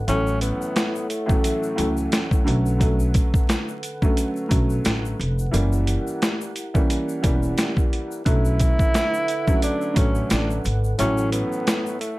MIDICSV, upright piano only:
0, 0, Header, 1, 2, 480
1, 0, Start_track
1, 0, Key_signature, 2, "minor"
1, 0, Tempo, 681818
1, 57, Time_signature, 4, 2, 24, 8
1, 8581, End_track
2, 0, Start_track
2, 0, Title_t, "Upright piano"
2, 0, Program_c, 0, 0
2, 54, Note_on_c, 0, 45, 93
2, 59, Note_on_c, 0, 52, 86
2, 64, Note_on_c, 0, 54, 80
2, 70, Note_on_c, 0, 57, 86
2, 75, Note_on_c, 0, 61, 105
2, 725, Note_off_c, 0, 45, 0
2, 727, Note_off_c, 0, 52, 0
2, 730, Note_off_c, 0, 54, 0
2, 733, Note_off_c, 0, 57, 0
2, 735, Note_off_c, 0, 61, 0
2, 888, Note_on_c, 0, 45, 91
2, 895, Note_on_c, 0, 52, 79
2, 900, Note_on_c, 0, 54, 77
2, 905, Note_on_c, 0, 57, 79
2, 910, Note_on_c, 0, 61, 98
2, 1220, Note_off_c, 0, 45, 0
2, 1223, Note_off_c, 0, 52, 0
2, 1226, Note_off_c, 0, 54, 0
2, 1228, Note_off_c, 0, 57, 0
2, 1231, Note_off_c, 0, 61, 0
2, 1238, Note_on_c, 0, 45, 82
2, 1243, Note_on_c, 0, 52, 82
2, 1248, Note_on_c, 0, 54, 81
2, 1254, Note_on_c, 0, 57, 84
2, 1259, Note_on_c, 0, 61, 109
2, 1717, Note_off_c, 0, 54, 0
2, 1721, Note_on_c, 0, 50, 92
2, 1724, Note_off_c, 0, 57, 0
2, 1728, Note_off_c, 0, 45, 0
2, 1728, Note_on_c, 0, 54, 84
2, 1730, Note_off_c, 0, 52, 0
2, 1731, Note_off_c, 0, 61, 0
2, 1734, Note_on_c, 0, 57, 86
2, 1741, Note_on_c, 0, 61, 101
2, 1951, Note_off_c, 0, 50, 0
2, 1956, Note_off_c, 0, 54, 0
2, 1959, Note_off_c, 0, 57, 0
2, 1962, Note_off_c, 0, 61, 0
2, 1962, Note_on_c, 0, 50, 86
2, 1968, Note_on_c, 0, 54, 88
2, 1975, Note_on_c, 0, 57, 87
2, 1982, Note_on_c, 0, 61, 103
2, 2639, Note_off_c, 0, 50, 0
2, 2642, Note_off_c, 0, 54, 0
2, 2645, Note_off_c, 0, 57, 0
2, 2649, Note_off_c, 0, 61, 0
2, 2829, Note_on_c, 0, 50, 87
2, 2835, Note_on_c, 0, 54, 80
2, 2842, Note_on_c, 0, 57, 87
2, 2850, Note_on_c, 0, 61, 100
2, 3144, Note_off_c, 0, 50, 0
2, 3152, Note_off_c, 0, 54, 0
2, 3155, Note_on_c, 0, 50, 89
2, 3157, Note_off_c, 0, 57, 0
2, 3161, Note_off_c, 0, 61, 0
2, 3162, Note_on_c, 0, 54, 88
2, 3169, Note_on_c, 0, 57, 84
2, 3175, Note_on_c, 0, 61, 98
2, 3612, Note_off_c, 0, 50, 0
2, 3616, Note_off_c, 0, 54, 0
2, 3619, Note_off_c, 0, 57, 0
2, 3622, Note_off_c, 0, 61, 0
2, 3881, Note_on_c, 0, 52, 88
2, 3888, Note_on_c, 0, 55, 81
2, 3895, Note_on_c, 0, 58, 78
2, 3902, Note_on_c, 0, 61, 99
2, 4559, Note_off_c, 0, 52, 0
2, 4562, Note_off_c, 0, 55, 0
2, 4565, Note_off_c, 0, 58, 0
2, 4569, Note_off_c, 0, 61, 0
2, 4745, Note_on_c, 0, 52, 92
2, 4752, Note_on_c, 0, 55, 77
2, 4759, Note_on_c, 0, 58, 81
2, 4767, Note_on_c, 0, 61, 105
2, 5068, Note_off_c, 0, 52, 0
2, 5072, Note_off_c, 0, 55, 0
2, 5075, Note_off_c, 0, 58, 0
2, 5079, Note_off_c, 0, 61, 0
2, 5086, Note_on_c, 0, 52, 93
2, 5093, Note_on_c, 0, 55, 87
2, 5099, Note_on_c, 0, 58, 82
2, 5107, Note_on_c, 0, 61, 101
2, 5761, Note_off_c, 0, 52, 0
2, 5764, Note_off_c, 0, 55, 0
2, 5767, Note_off_c, 0, 58, 0
2, 5771, Note_off_c, 0, 61, 0
2, 5810, Note_on_c, 0, 50, 98
2, 5817, Note_on_c, 0, 54, 94
2, 5824, Note_on_c, 0, 57, 86
2, 5830, Note_on_c, 0, 61, 101
2, 6483, Note_off_c, 0, 50, 0
2, 6486, Note_off_c, 0, 54, 0
2, 6490, Note_off_c, 0, 57, 0
2, 6493, Note_off_c, 0, 61, 0
2, 6666, Note_on_c, 0, 50, 80
2, 6674, Note_on_c, 0, 54, 84
2, 6680, Note_on_c, 0, 57, 80
2, 6687, Note_on_c, 0, 61, 104
2, 6985, Note_off_c, 0, 50, 0
2, 6992, Note_off_c, 0, 54, 0
2, 6995, Note_on_c, 0, 50, 94
2, 6996, Note_off_c, 0, 57, 0
2, 6999, Note_off_c, 0, 61, 0
2, 7003, Note_on_c, 0, 54, 90
2, 7009, Note_on_c, 0, 57, 87
2, 7016, Note_on_c, 0, 61, 103
2, 7452, Note_off_c, 0, 50, 0
2, 7456, Note_off_c, 0, 54, 0
2, 7459, Note_off_c, 0, 57, 0
2, 7463, Note_off_c, 0, 61, 0
2, 7734, Note_on_c, 0, 45, 98
2, 7740, Note_on_c, 0, 52, 85
2, 7746, Note_on_c, 0, 54, 87
2, 7751, Note_on_c, 0, 57, 88
2, 7755, Note_on_c, 0, 61, 106
2, 8405, Note_off_c, 0, 45, 0
2, 8408, Note_off_c, 0, 52, 0
2, 8411, Note_off_c, 0, 54, 0
2, 8413, Note_off_c, 0, 57, 0
2, 8416, Note_off_c, 0, 61, 0
2, 8581, End_track
0, 0, End_of_file